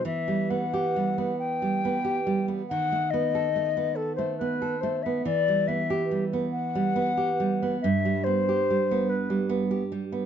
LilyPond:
<<
  \new Staff \with { instrumentName = "Flute" } { \time 6/8 \key e \minor \tempo 4. = 47 e''8 fis''4 g''4. | fis''8 dis''4 a'16 c''16 b'8 c''16 e''16 | d''8 e''8. r16 fis''4. | e''8 c''4 b'8 r4 | }
  \new Staff \with { instrumentName = "Nylon-string guitar" } { \time 6/8 \key e \minor e16 g16 b16 g'16 g16 b8 g16 b16 g'16 g16 b16 | dis16 a16 b16 a'16 a16 b8 a16 b16 a'16 a16 b16 | e16 g16 b16 g'16 g16 b8 g16 b16 g'16 g16 b16 | g,16 g16 b16 g'16 g16 b8 g16 b16 g'16 g16 b16 | }
>>